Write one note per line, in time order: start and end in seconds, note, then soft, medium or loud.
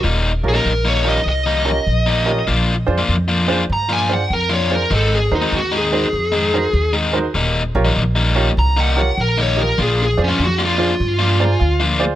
0.03 0.39 D#1 medium
0.03 0.30 D#3 medium
0.03 0.30 G3 medium
0.03 0.30 A#3 medium
0.03 0.31 D#4 loud
0.43 0.62 A#1 medium
0.43 0.54 C#4 medium
0.43 0.54 F4 medium
0.43 0.54 G4 medium
0.43 0.55 A#4 medium
0.48 0.86 A#4 medium
0.54 0.71 D#3 medium
0.54 0.71 G3 medium
0.54 0.71 A#3 medium
0.54 0.71 D#4 medium
0.65 1.18 A#1 medium
0.85 1.04 D#3 medium
0.85 1.04 G3 medium
0.85 1.04 A#3 medium
0.85 1.05 D#4 medium
0.85 1.06 C#5 medium
1.04 1.19 D#3 medium
1.04 1.19 G3 medium
1.04 1.19 A#3 medium
1.04 1.15 C#4 medium
1.04 1.19 D#4 medium
1.04 1.15 F4 medium
1.04 1.15 G4 medium
1.04 1.15 A#4 medium
1.09 1.27 D#5 medium
1.26 1.79 C2 medium
1.26 2.46 D#5 medium
1.46 1.70 D#3 medium
1.46 1.70 G3 medium
1.46 1.69 A#3 medium
1.46 1.69 D#4 medium
1.65 1.76 C#4 medium
1.65 1.76 F4 medium
1.65 1.76 G4 medium
1.65 1.76 A#4 medium
1.87 2.40 A#1 medium
2.06 2.30 D#3 medium
2.06 2.30 G3 medium
2.06 2.30 A#3 medium
2.06 2.30 D#4 medium
2.25 2.37 C#4 medium
2.25 2.37 F4 medium
2.25 2.37 G4 medium
2.25 2.37 A#4 medium
2.47 2.83 A#1 medium
2.47 2.73 F3 medium
2.47 2.74 A#3 medium
2.47 2.74 D4 loud
2.47 2.74 F4 medium
2.86 3.06 F2 medium
2.86 2.98 D4 medium
2.86 2.98 F4 medium
2.86 2.98 G#4 medium
2.86 2.98 C5 medium
2.98 3.15 F3 medium
2.98 3.15 A#3 medium
2.98 3.15 D4 medium
2.98 3.14 F4 loud
3.09 3.62 F2 medium
3.28 3.47 F3 medium
3.28 3.47 A#3 medium
3.28 3.48 D4 medium
3.28 3.48 F4 medium
3.48 3.62 F3 medium
3.48 3.62 A#3 medium
3.48 3.59 D4 medium
3.48 3.62 D4 medium
3.48 3.59 F4 medium
3.48 3.62 F4 medium
3.48 3.59 G#4 medium
3.48 3.59 C5 medium
3.70 4.22 G2 medium
3.70 3.91 A#5 loud
3.89 4.13 F3 medium
3.89 4.13 A#3 medium
3.89 4.13 D4 medium
3.89 4.12 F4 medium
3.89 4.11 G#5 medium
4.09 4.20 D4 medium
4.09 4.20 F4 medium
4.09 4.20 G#4 medium
4.09 4.20 C5 medium
4.13 4.32 F#5 medium
4.30 4.83 F2 medium
4.30 4.52 A#4 medium
4.50 4.74 F3 medium
4.50 4.74 A#3 medium
4.50 4.73 D4 medium
4.50 4.73 F4 medium
4.50 4.72 C#5 loud
4.70 4.81 D4 medium
4.70 4.81 F4 medium
4.70 4.81 G#4 medium
4.70 4.81 C5 medium
4.75 4.93 A#4 medium
4.90 5.26 G#1 medium
4.90 5.17 D#3 medium
4.90 5.17 G#3 loud
4.90 5.17 C4 loud
4.90 5.18 D#4 loud
4.95 5.13 A4 medium
5.15 5.33 G#4 medium
5.31 5.49 D#2 medium
5.31 5.42 D#4 medium
5.31 5.53 D#4 medium
5.31 5.42 F#4 medium
5.31 5.42 A#4 medium
5.31 5.42 C5 medium
5.42 5.59 D#3 medium
5.42 5.58 G#3 medium
5.42 5.58 C4 medium
5.42 5.58 D#4 medium
5.52 6.05 D#2 medium
5.56 5.74 F#4 medium
5.72 5.91 D#3 medium
5.72 5.91 G#3 medium
5.72 5.92 C4 medium
5.72 5.92 D#4 medium
5.77 6.93 G#4 loud
5.92 6.06 D#3 loud
5.92 6.06 G#3 medium
5.92 6.06 C4 medium
5.92 6.02 D#4 medium
5.92 6.06 D#4 loud
5.92 6.03 F#4 medium
5.92 6.03 A#4 medium
5.92 6.03 C5 medium
6.13 6.66 F2 medium
6.32 6.56 D#3 medium
6.32 6.56 G#3 medium
6.32 6.56 C4 medium
6.32 6.56 D#4 loud
6.53 6.64 D#4 medium
6.53 6.64 F#4 medium
6.53 6.64 A#4 medium
6.53 6.64 C5 medium
6.73 7.26 D#2 medium
6.93 7.17 D#3 medium
6.93 7.17 G#3 medium
6.93 7.17 C4 medium
6.93 7.17 D#4 loud
7.13 7.24 D#4 medium
7.13 7.24 F#4 medium
7.13 7.24 A#4 medium
7.13 7.24 C5 medium
7.34 7.69 D#1 medium
7.34 7.61 D#3 medium
7.34 7.61 G3 medium
7.34 7.61 A#3 medium
7.34 7.61 D#4 loud
7.75 7.93 A#1 medium
7.75 7.85 F4 medium
7.75 7.85 G4 medium
7.75 7.85 A#4 medium
7.75 7.85 C#5 medium
7.85 8.02 D#3 medium
7.85 8.02 G3 medium
7.85 8.02 A#3 medium
7.85 8.01 D#4 loud
7.96 8.49 A#1 medium
8.15 8.34 D#3 medium
8.15 8.35 G3 medium
8.15 8.35 A#3 medium
8.15 8.35 D#4 medium
8.35 8.49 D#3 medium
8.35 8.49 G3 medium
8.35 8.50 A#3 medium
8.35 8.50 D#4 medium
8.35 8.46 F4 medium
8.35 8.46 G4 medium
8.35 8.46 A#4 medium
8.35 8.46 C#5 medium
8.57 9.10 C2 medium
8.57 8.77 A#5 loud
8.77 9.00 D#3 medium
8.77 9.00 G3 medium
8.77 9.00 A#3 medium
8.77 9.00 D#4 medium
8.77 8.98 F#5 medium
8.96 9.07 F4 medium
8.96 9.07 G4 medium
8.96 9.07 A#4 medium
8.96 9.07 C#5 medium
8.96 9.18 F#5 medium
9.18 9.70 A#1 medium
9.18 9.39 A#4 medium
9.38 9.61 D#3 medium
9.38 9.61 G3 medium
9.38 9.61 A#3 medium
9.38 9.61 D#4 medium
9.38 9.59 C#5 loud
9.56 9.67 F4 medium
9.56 9.67 G4 medium
9.56 9.67 A#4 medium
9.56 9.67 D#5 medium
9.61 9.79 A#4 medium
9.78 10.13 A#1 medium
9.78 10.04 F3 medium
9.78 10.04 A#3 medium
9.78 10.04 D4 loud
9.78 10.05 F4 loud
9.82 10.00 G#4 medium
10.03 10.20 G#4 medium
10.17 10.36 F2 medium
10.17 10.28 F4 medium
10.17 10.28 G#4 medium
10.17 10.28 C5 medium
10.17 10.28 D5 medium
10.24 10.41 C#4 medium
10.28 10.45 F3 medium
10.28 10.45 A#3 medium
10.28 10.45 D4 loud
10.28 10.45 F4 loud
10.39 10.92 F2 medium
10.44 10.61 F#4 medium
10.58 10.77 F3 medium
10.58 10.77 A#3 medium
10.58 10.78 D4 medium
10.58 10.78 F4 medium
10.65 11.80 F4 loud
10.78 10.92 F3 medium
10.78 10.92 A#3 medium
10.78 10.92 D4 loud
10.78 10.89 F4 medium
10.78 10.93 F4 loud
10.78 10.89 G#4 medium
10.78 10.89 C5 medium
10.78 10.89 D5 medium
11.00 11.53 G2 medium
11.19 11.43 F3 medium
11.19 11.43 A#3 medium
11.19 11.43 D4 medium
11.19 11.42 F4 loud
11.40 11.50 F4 medium
11.40 11.50 G#4 medium
11.40 11.50 C5 medium
11.40 11.50 D5 medium
11.40 11.49 A#5 medium
11.50 11.60 G#5 medium
11.60 12.14 D2 medium
11.60 11.97 F5 medium
11.80 12.04 F3 medium
11.80 12.04 A#3 medium
11.80 12.03 D4 medium
11.80 12.03 F4 loud
11.99 12.11 F4 medium
11.99 12.10 G#4 medium
11.99 12.10 C5 medium
11.99 12.10 D5 medium